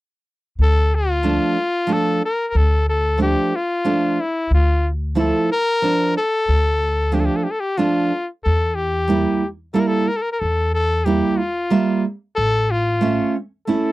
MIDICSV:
0, 0, Header, 1, 4, 480
1, 0, Start_track
1, 0, Key_signature, -1, "minor"
1, 0, Tempo, 655738
1, 426, Time_signature, 3, 2, 24, 8
1, 10190, End_track
2, 0, Start_track
2, 0, Title_t, "Cornet"
2, 0, Program_c, 0, 56
2, 457, Note_on_c, 0, 69, 90
2, 697, Note_on_c, 0, 65, 84
2, 708, Note_off_c, 0, 69, 0
2, 1411, Note_on_c, 0, 69, 94
2, 1422, Note_off_c, 0, 65, 0
2, 1638, Note_off_c, 0, 69, 0
2, 1648, Note_on_c, 0, 70, 78
2, 1818, Note_off_c, 0, 70, 0
2, 1818, Note_on_c, 0, 70, 76
2, 1879, Note_on_c, 0, 69, 79
2, 1890, Note_off_c, 0, 70, 0
2, 2112, Note_off_c, 0, 69, 0
2, 2117, Note_on_c, 0, 69, 85
2, 2335, Note_off_c, 0, 69, 0
2, 2360, Note_on_c, 0, 67, 83
2, 2602, Note_on_c, 0, 65, 83
2, 2613, Note_off_c, 0, 67, 0
2, 3078, Note_on_c, 0, 64, 72
2, 3089, Note_off_c, 0, 65, 0
2, 3311, Note_off_c, 0, 64, 0
2, 3327, Note_on_c, 0, 65, 76
2, 3578, Note_off_c, 0, 65, 0
2, 3799, Note_on_c, 0, 69, 75
2, 4015, Note_off_c, 0, 69, 0
2, 4042, Note_on_c, 0, 70, 108
2, 4483, Note_off_c, 0, 70, 0
2, 4515, Note_on_c, 0, 69, 82
2, 5229, Note_on_c, 0, 67, 52
2, 5240, Note_off_c, 0, 69, 0
2, 5271, Note_on_c, 0, 69, 62
2, 5282, Note_off_c, 0, 67, 0
2, 5310, Note_on_c, 0, 67, 61
2, 5321, Note_off_c, 0, 69, 0
2, 5390, Note_on_c, 0, 69, 58
2, 5401, Note_off_c, 0, 67, 0
2, 5444, Note_on_c, 0, 67, 55
2, 5455, Note_off_c, 0, 69, 0
2, 5499, Note_on_c, 0, 69, 74
2, 5510, Note_off_c, 0, 67, 0
2, 5565, Note_on_c, 0, 67, 87
2, 5576, Note_off_c, 0, 69, 0
2, 5693, Note_on_c, 0, 65, 76
2, 5704, Note_off_c, 0, 67, 0
2, 6058, Note_off_c, 0, 65, 0
2, 6177, Note_on_c, 0, 69, 77
2, 6404, Note_on_c, 0, 67, 78
2, 6415, Note_off_c, 0, 69, 0
2, 6934, Note_off_c, 0, 67, 0
2, 7129, Note_on_c, 0, 69, 82
2, 7173, Note_on_c, 0, 70, 58
2, 7184, Note_off_c, 0, 69, 0
2, 7225, Note_on_c, 0, 69, 85
2, 7236, Note_off_c, 0, 70, 0
2, 7377, Note_on_c, 0, 70, 77
2, 7388, Note_off_c, 0, 69, 0
2, 7439, Note_on_c, 0, 69, 65
2, 7450, Note_off_c, 0, 70, 0
2, 7479, Note_on_c, 0, 70, 78
2, 7490, Note_off_c, 0, 69, 0
2, 7552, Note_off_c, 0, 70, 0
2, 7556, Note_on_c, 0, 70, 73
2, 7612, Note_on_c, 0, 69, 81
2, 7623, Note_off_c, 0, 70, 0
2, 7857, Note_off_c, 0, 69, 0
2, 7865, Note_on_c, 0, 69, 88
2, 8088, Note_on_c, 0, 67, 72
2, 8099, Note_off_c, 0, 69, 0
2, 8325, Note_on_c, 0, 65, 80
2, 8336, Note_off_c, 0, 67, 0
2, 8814, Note_off_c, 0, 65, 0
2, 9046, Note_on_c, 0, 69, 100
2, 9301, Note_on_c, 0, 65, 81
2, 9312, Note_off_c, 0, 69, 0
2, 9783, Note_off_c, 0, 65, 0
2, 10006, Note_on_c, 0, 69, 79
2, 10190, Note_off_c, 0, 69, 0
2, 10190, End_track
3, 0, Start_track
3, 0, Title_t, "Nylon-string guitar"
3, 0, Program_c, 1, 24
3, 901, Note_on_c, 1, 53, 49
3, 904, Note_on_c, 1, 57, 46
3, 911, Note_on_c, 1, 62, 56
3, 1143, Note_off_c, 1, 53, 0
3, 1145, Note_off_c, 1, 57, 0
3, 1148, Note_off_c, 1, 62, 0
3, 1368, Note_on_c, 1, 53, 62
3, 1379, Note_on_c, 1, 57, 51
3, 1382, Note_on_c, 1, 62, 55
3, 1616, Note_off_c, 1, 53, 0
3, 1622, Note_off_c, 1, 57, 0
3, 1624, Note_off_c, 1, 62, 0
3, 2326, Note_on_c, 1, 53, 49
3, 2332, Note_on_c, 1, 57, 43
3, 2339, Note_on_c, 1, 62, 56
3, 2575, Note_off_c, 1, 53, 0
3, 2578, Note_off_c, 1, 57, 0
3, 2582, Note_off_c, 1, 62, 0
3, 2815, Note_on_c, 1, 53, 47
3, 2819, Note_on_c, 1, 57, 48
3, 2822, Note_on_c, 1, 62, 64
3, 3060, Note_off_c, 1, 53, 0
3, 3061, Note_off_c, 1, 57, 0
3, 3063, Note_off_c, 1, 62, 0
3, 3772, Note_on_c, 1, 53, 47
3, 3777, Note_on_c, 1, 57, 45
3, 3781, Note_on_c, 1, 64, 58
3, 4018, Note_off_c, 1, 53, 0
3, 4019, Note_off_c, 1, 57, 0
3, 4022, Note_off_c, 1, 64, 0
3, 4260, Note_on_c, 1, 53, 55
3, 4273, Note_on_c, 1, 62, 63
3, 4502, Note_off_c, 1, 53, 0
3, 4508, Note_off_c, 1, 62, 0
3, 5211, Note_on_c, 1, 53, 53
3, 5214, Note_on_c, 1, 57, 43
3, 5221, Note_on_c, 1, 62, 60
3, 5457, Note_off_c, 1, 53, 0
3, 5459, Note_off_c, 1, 57, 0
3, 5462, Note_off_c, 1, 62, 0
3, 5691, Note_on_c, 1, 53, 53
3, 5694, Note_on_c, 1, 57, 46
3, 5701, Note_on_c, 1, 62, 63
3, 5937, Note_off_c, 1, 53, 0
3, 5937, Note_off_c, 1, 57, 0
3, 5942, Note_off_c, 1, 62, 0
3, 6644, Note_on_c, 1, 55, 57
3, 6653, Note_on_c, 1, 58, 44
3, 6659, Note_on_c, 1, 64, 59
3, 6893, Note_off_c, 1, 55, 0
3, 6897, Note_off_c, 1, 58, 0
3, 6901, Note_off_c, 1, 64, 0
3, 7127, Note_on_c, 1, 55, 46
3, 7131, Note_on_c, 1, 58, 47
3, 7140, Note_on_c, 1, 64, 62
3, 7374, Note_off_c, 1, 55, 0
3, 7377, Note_off_c, 1, 58, 0
3, 7381, Note_off_c, 1, 64, 0
3, 8094, Note_on_c, 1, 55, 56
3, 8098, Note_on_c, 1, 58, 44
3, 8106, Note_on_c, 1, 64, 58
3, 8338, Note_off_c, 1, 55, 0
3, 8340, Note_off_c, 1, 58, 0
3, 8344, Note_off_c, 1, 64, 0
3, 8567, Note_on_c, 1, 55, 63
3, 8572, Note_on_c, 1, 58, 50
3, 8577, Note_on_c, 1, 76, 62
3, 8815, Note_off_c, 1, 55, 0
3, 8818, Note_off_c, 1, 58, 0
3, 8819, Note_off_c, 1, 76, 0
3, 9522, Note_on_c, 1, 57, 54
3, 9531, Note_on_c, 1, 61, 51
3, 9538, Note_on_c, 1, 76, 49
3, 9773, Note_off_c, 1, 57, 0
3, 9777, Note_off_c, 1, 61, 0
3, 9781, Note_off_c, 1, 76, 0
3, 10009, Note_on_c, 1, 57, 56
3, 10013, Note_on_c, 1, 61, 49
3, 10019, Note_on_c, 1, 64, 62
3, 10190, Note_off_c, 1, 57, 0
3, 10190, Note_off_c, 1, 61, 0
3, 10190, Note_off_c, 1, 64, 0
3, 10190, End_track
4, 0, Start_track
4, 0, Title_t, "Upright bass"
4, 0, Program_c, 2, 32
4, 430, Note_on_c, 2, 38, 70
4, 1004, Note_off_c, 2, 38, 0
4, 1866, Note_on_c, 2, 38, 81
4, 2441, Note_off_c, 2, 38, 0
4, 3299, Note_on_c, 2, 38, 75
4, 3876, Note_off_c, 2, 38, 0
4, 4746, Note_on_c, 2, 38, 73
4, 5321, Note_off_c, 2, 38, 0
4, 6192, Note_on_c, 2, 40, 81
4, 6765, Note_off_c, 2, 40, 0
4, 7624, Note_on_c, 2, 40, 69
4, 8200, Note_off_c, 2, 40, 0
4, 9060, Note_on_c, 2, 33, 74
4, 9638, Note_off_c, 2, 33, 0
4, 10190, End_track
0, 0, End_of_file